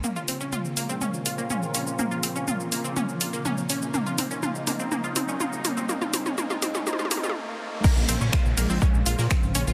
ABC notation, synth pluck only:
X:1
M:4/4
L:1/16
Q:1/4=123
K:Bbm
V:1 name="Synth pluck"
B, F C D F z B, C D z F B, D z D z | B, F C D F z B, C D z F B, D z D z | B, F C D F z B, C B, F C D F z B, C | B, F C D B, F C D B, F B, F z4 |
[B,B] z [Cc] [Dd] [Ff] z [B,B] [Cc] [Dd] z [Ff] [B,B] [Cc] z [Dd] [Ff] |]